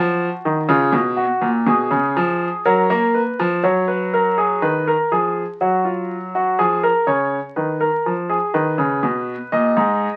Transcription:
0, 0, Header, 1, 2, 480
1, 0, Start_track
1, 0, Tempo, 978793
1, 339, Time_signature, 4, 2, 24, 8
1, 4985, End_track
2, 0, Start_track
2, 0, Title_t, "Grand piano"
2, 0, Program_c, 0, 0
2, 0, Note_on_c, 0, 53, 101
2, 0, Note_on_c, 0, 66, 74
2, 134, Note_off_c, 0, 53, 0
2, 222, Note_on_c, 0, 51, 80
2, 322, Note_off_c, 0, 66, 0
2, 336, Note_off_c, 0, 51, 0
2, 337, Note_on_c, 0, 49, 106
2, 339, Note_on_c, 0, 65, 90
2, 453, Note_off_c, 0, 49, 0
2, 454, Note_on_c, 0, 47, 98
2, 487, Note_off_c, 0, 65, 0
2, 572, Note_on_c, 0, 66, 76
2, 603, Note_off_c, 0, 47, 0
2, 694, Note_on_c, 0, 46, 86
2, 723, Note_off_c, 0, 66, 0
2, 812, Note_off_c, 0, 46, 0
2, 816, Note_on_c, 0, 47, 90
2, 817, Note_on_c, 0, 68, 76
2, 934, Note_off_c, 0, 47, 0
2, 935, Note_on_c, 0, 49, 87
2, 1054, Note_off_c, 0, 49, 0
2, 1062, Note_on_c, 0, 53, 98
2, 1211, Note_off_c, 0, 53, 0
2, 1286, Note_off_c, 0, 68, 0
2, 1302, Note_on_c, 0, 54, 95
2, 1302, Note_on_c, 0, 70, 84
2, 1419, Note_off_c, 0, 54, 0
2, 1423, Note_on_c, 0, 58, 99
2, 1451, Note_off_c, 0, 70, 0
2, 1542, Note_on_c, 0, 71, 68
2, 1572, Note_off_c, 0, 58, 0
2, 1665, Note_on_c, 0, 53, 92
2, 1692, Note_off_c, 0, 71, 0
2, 1781, Note_off_c, 0, 53, 0
2, 1783, Note_on_c, 0, 54, 85
2, 1783, Note_on_c, 0, 73, 70
2, 1901, Note_off_c, 0, 73, 0
2, 1902, Note_on_c, 0, 71, 72
2, 2021, Note_off_c, 0, 71, 0
2, 2028, Note_on_c, 0, 70, 73
2, 2145, Note_off_c, 0, 70, 0
2, 2147, Note_on_c, 0, 68, 67
2, 2254, Note_off_c, 0, 54, 0
2, 2265, Note_off_c, 0, 68, 0
2, 2266, Note_on_c, 0, 51, 70
2, 2267, Note_on_c, 0, 71, 85
2, 2386, Note_off_c, 0, 71, 0
2, 2390, Note_on_c, 0, 70, 73
2, 2417, Note_off_c, 0, 51, 0
2, 2508, Note_off_c, 0, 70, 0
2, 2509, Note_on_c, 0, 53, 64
2, 2510, Note_on_c, 0, 68, 66
2, 2659, Note_off_c, 0, 53, 0
2, 2660, Note_off_c, 0, 68, 0
2, 2750, Note_on_c, 0, 54, 70
2, 2751, Note_on_c, 0, 66, 71
2, 2868, Note_off_c, 0, 66, 0
2, 2868, Note_on_c, 0, 65, 57
2, 3018, Note_off_c, 0, 65, 0
2, 3114, Note_on_c, 0, 66, 75
2, 3216, Note_off_c, 0, 54, 0
2, 3229, Note_off_c, 0, 66, 0
2, 3231, Note_on_c, 0, 68, 81
2, 3232, Note_on_c, 0, 53, 73
2, 3347, Note_off_c, 0, 68, 0
2, 3351, Note_on_c, 0, 70, 78
2, 3379, Note_off_c, 0, 53, 0
2, 3467, Note_off_c, 0, 70, 0
2, 3467, Note_on_c, 0, 49, 65
2, 3467, Note_on_c, 0, 73, 75
2, 3616, Note_off_c, 0, 49, 0
2, 3616, Note_off_c, 0, 73, 0
2, 3709, Note_on_c, 0, 71, 64
2, 3711, Note_on_c, 0, 51, 65
2, 3825, Note_off_c, 0, 71, 0
2, 3828, Note_on_c, 0, 70, 68
2, 3859, Note_off_c, 0, 51, 0
2, 3953, Note_on_c, 0, 53, 68
2, 3977, Note_off_c, 0, 70, 0
2, 4068, Note_on_c, 0, 68, 65
2, 4101, Note_off_c, 0, 53, 0
2, 4185, Note_off_c, 0, 68, 0
2, 4188, Note_on_c, 0, 51, 83
2, 4188, Note_on_c, 0, 71, 73
2, 4305, Note_off_c, 0, 51, 0
2, 4306, Note_on_c, 0, 49, 78
2, 4424, Note_off_c, 0, 49, 0
2, 4429, Note_on_c, 0, 47, 82
2, 4577, Note_off_c, 0, 47, 0
2, 4653, Note_off_c, 0, 71, 0
2, 4669, Note_on_c, 0, 75, 72
2, 4671, Note_on_c, 0, 46, 79
2, 4784, Note_off_c, 0, 46, 0
2, 4790, Note_on_c, 0, 44, 80
2, 4936, Note_off_c, 0, 44, 0
2, 4985, Note_off_c, 0, 75, 0
2, 4985, End_track
0, 0, End_of_file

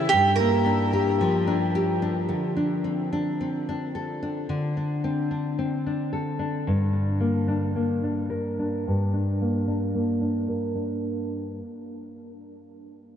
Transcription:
0, 0, Header, 1, 3, 480
1, 0, Start_track
1, 0, Key_signature, -2, "minor"
1, 0, Tempo, 545951
1, 101, Time_signature, 4, 2, 24, 8
1, 11576, End_track
2, 0, Start_track
2, 0, Title_t, "Resonator guitar played with a steel bar"
2, 0, Program_c, 0, 25
2, 0, Note_on_c, 0, 64, 99
2, 78, Note_on_c, 0, 67, 118
2, 109, Note_off_c, 0, 64, 0
2, 311, Note_off_c, 0, 67, 0
2, 312, Note_on_c, 0, 70, 97
2, 1009, Note_off_c, 0, 70, 0
2, 11576, End_track
3, 0, Start_track
3, 0, Title_t, "Nylon-string guitar"
3, 0, Program_c, 1, 24
3, 0, Note_on_c, 1, 49, 93
3, 0, Note_on_c, 1, 52, 75
3, 0, Note_on_c, 1, 57, 66
3, 0, Note_on_c, 1, 61, 63
3, 0, Note_on_c, 1, 67, 77
3, 101, Note_off_c, 1, 49, 0
3, 112, Note_on_c, 1, 43, 82
3, 142, Note_off_c, 1, 52, 0
3, 148, Note_off_c, 1, 57, 0
3, 154, Note_off_c, 1, 61, 0
3, 351, Note_on_c, 1, 58, 65
3, 578, Note_on_c, 1, 62, 69
3, 816, Note_off_c, 1, 67, 0
3, 820, Note_on_c, 1, 67, 74
3, 1062, Note_on_c, 1, 53, 73
3, 1293, Note_off_c, 1, 62, 0
3, 1296, Note_on_c, 1, 62, 69
3, 1529, Note_off_c, 1, 67, 0
3, 1539, Note_on_c, 1, 67, 72
3, 1772, Note_off_c, 1, 62, 0
3, 1776, Note_on_c, 1, 62, 66
3, 2009, Note_on_c, 1, 50, 62
3, 2021, Note_off_c, 1, 43, 0
3, 2065, Note_off_c, 1, 67, 0
3, 2069, Note_off_c, 1, 58, 0
3, 2251, Note_off_c, 1, 62, 0
3, 2255, Note_on_c, 1, 62, 53
3, 2498, Note_on_c, 1, 60, 56
3, 2744, Note_off_c, 1, 62, 0
3, 2748, Note_on_c, 1, 62, 64
3, 2976, Note_off_c, 1, 60, 0
3, 2994, Note_on_c, 1, 60, 53
3, 3238, Note_off_c, 1, 62, 0
3, 3241, Note_on_c, 1, 62, 57
3, 3471, Note_on_c, 1, 69, 55
3, 3711, Note_off_c, 1, 62, 0
3, 3715, Note_on_c, 1, 62, 59
3, 3945, Note_off_c, 1, 50, 0
3, 3948, Note_on_c, 1, 50, 66
3, 4139, Note_off_c, 1, 53, 0
3, 4189, Note_off_c, 1, 62, 0
3, 4193, Note_on_c, 1, 62, 46
3, 4422, Note_off_c, 1, 60, 0
3, 4432, Note_on_c, 1, 60, 63
3, 4665, Note_off_c, 1, 62, 0
3, 4668, Note_on_c, 1, 62, 58
3, 4901, Note_off_c, 1, 60, 0
3, 4911, Note_on_c, 1, 60, 57
3, 5153, Note_off_c, 1, 62, 0
3, 5157, Note_on_c, 1, 62, 49
3, 5376, Note_off_c, 1, 69, 0
3, 5387, Note_on_c, 1, 69, 55
3, 5616, Note_off_c, 1, 62, 0
3, 5620, Note_on_c, 1, 62, 55
3, 5866, Note_on_c, 1, 43, 72
3, 5909, Note_off_c, 1, 69, 0
3, 5912, Note_off_c, 1, 60, 0
3, 6087, Note_off_c, 1, 62, 0
3, 6091, Note_on_c, 1, 62, 48
3, 6333, Note_on_c, 1, 58, 59
3, 6573, Note_off_c, 1, 62, 0
3, 6577, Note_on_c, 1, 62, 60
3, 6817, Note_off_c, 1, 58, 0
3, 6821, Note_on_c, 1, 58, 48
3, 7026, Note_off_c, 1, 50, 0
3, 7064, Note_off_c, 1, 62, 0
3, 7067, Note_on_c, 1, 62, 50
3, 7296, Note_on_c, 1, 70, 57
3, 7550, Note_off_c, 1, 62, 0
3, 7554, Note_on_c, 1, 62, 55
3, 7799, Note_off_c, 1, 43, 0
3, 7803, Note_on_c, 1, 43, 65
3, 8028, Note_off_c, 1, 62, 0
3, 8031, Note_on_c, 1, 62, 52
3, 8273, Note_off_c, 1, 58, 0
3, 8276, Note_on_c, 1, 58, 55
3, 8505, Note_off_c, 1, 62, 0
3, 8509, Note_on_c, 1, 62, 54
3, 8744, Note_off_c, 1, 58, 0
3, 8747, Note_on_c, 1, 58, 49
3, 8977, Note_off_c, 1, 62, 0
3, 8980, Note_on_c, 1, 62, 49
3, 9215, Note_off_c, 1, 70, 0
3, 9219, Note_on_c, 1, 70, 54
3, 9449, Note_off_c, 1, 62, 0
3, 9453, Note_on_c, 1, 62, 48
3, 10185, Note_off_c, 1, 62, 0
3, 10188, Note_off_c, 1, 70, 0
3, 10193, Note_off_c, 1, 43, 0
3, 10193, Note_off_c, 1, 58, 0
3, 11576, End_track
0, 0, End_of_file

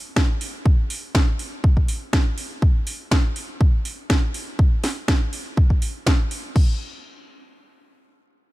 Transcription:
0, 0, Header, 1, 2, 480
1, 0, Start_track
1, 0, Tempo, 491803
1, 639, Time_signature, 4, 2, 24, 8
1, 8318, End_track
2, 0, Start_track
2, 0, Title_t, "Drums"
2, 160, Note_on_c, 9, 36, 109
2, 161, Note_on_c, 9, 38, 107
2, 257, Note_off_c, 9, 36, 0
2, 259, Note_off_c, 9, 38, 0
2, 400, Note_on_c, 9, 46, 85
2, 497, Note_off_c, 9, 46, 0
2, 640, Note_on_c, 9, 36, 106
2, 737, Note_off_c, 9, 36, 0
2, 880, Note_on_c, 9, 46, 104
2, 977, Note_off_c, 9, 46, 0
2, 1119, Note_on_c, 9, 36, 104
2, 1121, Note_on_c, 9, 38, 104
2, 1217, Note_off_c, 9, 36, 0
2, 1219, Note_off_c, 9, 38, 0
2, 1359, Note_on_c, 9, 46, 82
2, 1457, Note_off_c, 9, 46, 0
2, 1599, Note_on_c, 9, 36, 102
2, 1697, Note_off_c, 9, 36, 0
2, 1725, Note_on_c, 9, 36, 51
2, 1823, Note_off_c, 9, 36, 0
2, 1839, Note_on_c, 9, 46, 89
2, 1937, Note_off_c, 9, 46, 0
2, 2079, Note_on_c, 9, 36, 109
2, 2081, Note_on_c, 9, 38, 102
2, 2177, Note_off_c, 9, 36, 0
2, 2179, Note_off_c, 9, 38, 0
2, 2319, Note_on_c, 9, 46, 83
2, 2417, Note_off_c, 9, 46, 0
2, 2559, Note_on_c, 9, 36, 104
2, 2657, Note_off_c, 9, 36, 0
2, 2799, Note_on_c, 9, 46, 101
2, 2896, Note_off_c, 9, 46, 0
2, 3039, Note_on_c, 9, 36, 99
2, 3041, Note_on_c, 9, 38, 108
2, 3137, Note_off_c, 9, 36, 0
2, 3139, Note_off_c, 9, 38, 0
2, 3279, Note_on_c, 9, 46, 82
2, 3376, Note_off_c, 9, 46, 0
2, 3520, Note_on_c, 9, 36, 103
2, 3617, Note_off_c, 9, 36, 0
2, 3759, Note_on_c, 9, 46, 90
2, 3857, Note_off_c, 9, 46, 0
2, 3999, Note_on_c, 9, 36, 104
2, 4001, Note_on_c, 9, 38, 109
2, 4097, Note_off_c, 9, 36, 0
2, 4098, Note_off_c, 9, 38, 0
2, 4239, Note_on_c, 9, 46, 77
2, 4337, Note_off_c, 9, 46, 0
2, 4480, Note_on_c, 9, 36, 104
2, 4577, Note_off_c, 9, 36, 0
2, 4719, Note_on_c, 9, 46, 97
2, 4721, Note_on_c, 9, 38, 58
2, 4817, Note_off_c, 9, 46, 0
2, 4819, Note_off_c, 9, 38, 0
2, 4960, Note_on_c, 9, 36, 103
2, 4961, Note_on_c, 9, 38, 109
2, 5057, Note_off_c, 9, 36, 0
2, 5059, Note_off_c, 9, 38, 0
2, 5200, Note_on_c, 9, 46, 81
2, 5298, Note_off_c, 9, 46, 0
2, 5440, Note_on_c, 9, 36, 107
2, 5537, Note_off_c, 9, 36, 0
2, 5566, Note_on_c, 9, 36, 54
2, 5663, Note_off_c, 9, 36, 0
2, 5680, Note_on_c, 9, 46, 93
2, 5777, Note_off_c, 9, 46, 0
2, 5919, Note_on_c, 9, 36, 102
2, 5922, Note_on_c, 9, 38, 113
2, 6017, Note_off_c, 9, 36, 0
2, 6019, Note_off_c, 9, 38, 0
2, 6159, Note_on_c, 9, 46, 77
2, 6257, Note_off_c, 9, 46, 0
2, 6399, Note_on_c, 9, 36, 102
2, 6399, Note_on_c, 9, 49, 77
2, 6497, Note_off_c, 9, 36, 0
2, 6497, Note_off_c, 9, 49, 0
2, 8318, End_track
0, 0, End_of_file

